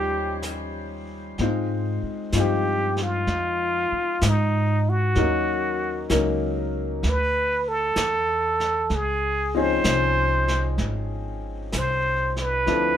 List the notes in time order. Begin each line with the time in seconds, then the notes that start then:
Already playing: D#2 F3 G3 C#4 D#4 F4 G4 C5
0.42 brush sweep, snare, hi-hat pedal
1.38 G#2 G#3 C4 D#4 F4 C5, brush sweep, snare
2.03 muted upright bass stroke
2.32 G2 F3 C4 D#4 F4, snare, hi-hat pedal
2.36 G4 C5
2.97 snare
3.02 F4
3.27 F2, brush sweep, snare
3.92 muted upright bass stroke
4.21 G#2, snare, hi-hat pedal
4.29 D#4
4.89 F#4
5.15 D#2 F#3 A#3 C#4 D#4 A#4, brush sweep, snare
6.10 C#2 F#3 A#3 C#4 D#4 A#4, snare, hi-hat pedal
7.03 D2, brush sweep, snare
7.09 B4
7.68 A4
7.96 E2, snare, hi-hat pedal
8.60 snare
8.90 C#2, brush sweep, snare
8.95 G#4
9.54 F3 C4 C#4 D#4 G#4 C5
9.84 C2, snare, hi-hat pedal
10.48 snare
10.78 G#1, brush sweep, snare
11.72 C2, snare, hi-hat pedal
11.78 C5
12.36 snare
12.41 B4
12.66 D2 F3 C4 D4 E4 A4, brush sweep, snare